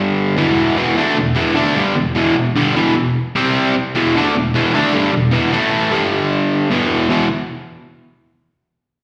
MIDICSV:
0, 0, Header, 1, 3, 480
1, 0, Start_track
1, 0, Key_signature, 1, "minor"
1, 0, Tempo, 396040
1, 931, Time_signature, 4, 2, 24, 8
1, 10949, End_track
2, 0, Start_track
2, 0, Title_t, "Overdriven electric guitar"
2, 0, Program_c, 0, 29
2, 0, Note_on_c, 0, 43, 96
2, 0, Note_on_c, 0, 50, 101
2, 0, Note_on_c, 0, 55, 97
2, 433, Note_off_c, 0, 43, 0
2, 441, Note_off_c, 0, 50, 0
2, 444, Note_off_c, 0, 55, 0
2, 448, Note_on_c, 0, 40, 94
2, 459, Note_on_c, 0, 47, 97
2, 459, Note_on_c, 0, 52, 98
2, 913, Note_off_c, 0, 40, 0
2, 923, Note_off_c, 0, 47, 0
2, 928, Note_off_c, 0, 52, 0
2, 928, Note_on_c, 0, 40, 103
2, 937, Note_on_c, 0, 47, 95
2, 945, Note_on_c, 0, 52, 103
2, 1161, Note_off_c, 0, 47, 0
2, 1162, Note_off_c, 0, 40, 0
2, 1166, Note_on_c, 0, 50, 98
2, 1171, Note_off_c, 0, 52, 0
2, 1180, Note_on_c, 0, 57, 106
2, 1188, Note_on_c, 0, 62, 107
2, 1401, Note_off_c, 0, 50, 0
2, 1408, Note_off_c, 0, 57, 0
2, 1411, Note_on_c, 0, 40, 72
2, 1412, Note_off_c, 0, 62, 0
2, 1417, Note_on_c, 0, 47, 75
2, 1603, Note_off_c, 0, 40, 0
2, 1606, Note_off_c, 0, 47, 0
2, 1642, Note_on_c, 0, 40, 107
2, 1653, Note_on_c, 0, 47, 94
2, 1659, Note_on_c, 0, 52, 103
2, 1868, Note_off_c, 0, 47, 0
2, 1873, Note_on_c, 0, 50, 100
2, 1879, Note_off_c, 0, 40, 0
2, 1881, Note_off_c, 0, 52, 0
2, 1886, Note_on_c, 0, 57, 117
2, 1894, Note_on_c, 0, 62, 108
2, 2115, Note_off_c, 0, 50, 0
2, 2116, Note_on_c, 0, 43, 96
2, 2121, Note_off_c, 0, 57, 0
2, 2125, Note_off_c, 0, 62, 0
2, 2130, Note_on_c, 0, 50, 92
2, 2133, Note_on_c, 0, 55, 116
2, 2356, Note_off_c, 0, 43, 0
2, 2363, Note_off_c, 0, 50, 0
2, 2363, Note_on_c, 0, 40, 71
2, 2365, Note_off_c, 0, 55, 0
2, 2372, Note_on_c, 0, 47, 75
2, 2559, Note_off_c, 0, 40, 0
2, 2564, Note_off_c, 0, 47, 0
2, 2603, Note_on_c, 0, 40, 90
2, 2612, Note_on_c, 0, 47, 103
2, 2626, Note_on_c, 0, 52, 103
2, 2840, Note_off_c, 0, 40, 0
2, 2845, Note_off_c, 0, 47, 0
2, 2852, Note_off_c, 0, 52, 0
2, 2863, Note_on_c, 0, 40, 69
2, 2867, Note_on_c, 0, 47, 75
2, 3049, Note_off_c, 0, 40, 0
2, 3051, Note_off_c, 0, 47, 0
2, 3098, Note_on_c, 0, 43, 86
2, 3109, Note_on_c, 0, 55, 108
2, 3111, Note_on_c, 0, 50, 107
2, 3326, Note_off_c, 0, 43, 0
2, 3331, Note_on_c, 0, 40, 95
2, 3333, Note_off_c, 0, 55, 0
2, 3334, Note_off_c, 0, 50, 0
2, 3345, Note_on_c, 0, 47, 100
2, 3350, Note_on_c, 0, 52, 103
2, 3564, Note_off_c, 0, 40, 0
2, 3568, Note_off_c, 0, 47, 0
2, 3574, Note_off_c, 0, 52, 0
2, 3577, Note_on_c, 0, 40, 73
2, 3583, Note_on_c, 0, 47, 82
2, 3766, Note_off_c, 0, 40, 0
2, 3769, Note_off_c, 0, 47, 0
2, 4066, Note_on_c, 0, 48, 100
2, 4072, Note_on_c, 0, 55, 100
2, 4081, Note_on_c, 0, 60, 115
2, 4531, Note_off_c, 0, 48, 0
2, 4534, Note_off_c, 0, 55, 0
2, 4539, Note_off_c, 0, 60, 0
2, 4789, Note_on_c, 0, 40, 111
2, 4795, Note_on_c, 0, 47, 102
2, 4800, Note_on_c, 0, 52, 111
2, 5013, Note_off_c, 0, 40, 0
2, 5016, Note_off_c, 0, 47, 0
2, 5019, Note_off_c, 0, 52, 0
2, 5038, Note_on_c, 0, 50, 98
2, 5048, Note_on_c, 0, 57, 98
2, 5058, Note_on_c, 0, 62, 109
2, 5257, Note_off_c, 0, 50, 0
2, 5262, Note_off_c, 0, 57, 0
2, 5267, Note_off_c, 0, 62, 0
2, 5272, Note_on_c, 0, 40, 71
2, 5282, Note_on_c, 0, 47, 74
2, 5454, Note_off_c, 0, 40, 0
2, 5458, Note_off_c, 0, 47, 0
2, 5506, Note_on_c, 0, 40, 105
2, 5520, Note_on_c, 0, 47, 96
2, 5521, Note_on_c, 0, 52, 108
2, 5732, Note_off_c, 0, 40, 0
2, 5738, Note_off_c, 0, 47, 0
2, 5739, Note_off_c, 0, 52, 0
2, 5747, Note_on_c, 0, 50, 118
2, 5754, Note_on_c, 0, 57, 105
2, 5758, Note_on_c, 0, 62, 117
2, 5966, Note_off_c, 0, 50, 0
2, 5975, Note_off_c, 0, 57, 0
2, 5977, Note_off_c, 0, 62, 0
2, 5978, Note_on_c, 0, 43, 100
2, 5981, Note_on_c, 0, 50, 105
2, 5994, Note_on_c, 0, 55, 110
2, 6207, Note_off_c, 0, 43, 0
2, 6209, Note_off_c, 0, 50, 0
2, 6215, Note_off_c, 0, 55, 0
2, 6216, Note_on_c, 0, 40, 67
2, 6223, Note_on_c, 0, 47, 68
2, 6405, Note_off_c, 0, 40, 0
2, 6409, Note_off_c, 0, 47, 0
2, 6444, Note_on_c, 0, 40, 91
2, 6450, Note_on_c, 0, 47, 103
2, 6460, Note_on_c, 0, 52, 99
2, 6680, Note_off_c, 0, 40, 0
2, 6683, Note_off_c, 0, 47, 0
2, 6683, Note_off_c, 0, 52, 0
2, 6690, Note_on_c, 0, 45, 104
2, 6698, Note_on_c, 0, 52, 99
2, 6710, Note_on_c, 0, 57, 100
2, 7159, Note_on_c, 0, 43, 91
2, 7160, Note_off_c, 0, 45, 0
2, 7164, Note_on_c, 0, 50, 94
2, 7166, Note_off_c, 0, 52, 0
2, 7171, Note_on_c, 0, 55, 103
2, 7173, Note_off_c, 0, 57, 0
2, 8117, Note_off_c, 0, 43, 0
2, 8120, Note_off_c, 0, 50, 0
2, 8123, Note_off_c, 0, 55, 0
2, 8123, Note_on_c, 0, 40, 92
2, 8132, Note_on_c, 0, 47, 94
2, 8133, Note_on_c, 0, 52, 97
2, 8581, Note_off_c, 0, 40, 0
2, 8592, Note_off_c, 0, 47, 0
2, 8596, Note_on_c, 0, 40, 99
2, 8604, Note_off_c, 0, 52, 0
2, 8607, Note_on_c, 0, 47, 105
2, 8617, Note_on_c, 0, 52, 109
2, 8795, Note_off_c, 0, 40, 0
2, 8800, Note_off_c, 0, 47, 0
2, 8805, Note_off_c, 0, 52, 0
2, 10949, End_track
3, 0, Start_track
3, 0, Title_t, "Muted overdriven electric guitar strokes"
3, 4546, Note_on_c, 9, 29, 59
3, 4667, Note_off_c, 9, 29, 0
3, 10949, End_track
0, 0, End_of_file